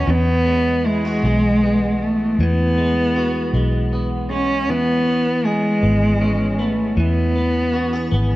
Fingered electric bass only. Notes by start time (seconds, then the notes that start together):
0.07 E2
1.23 B1
2.39 E2
3.53 B1
4.69 E2
5.83 G#1
6.97 E2
8.12 G#1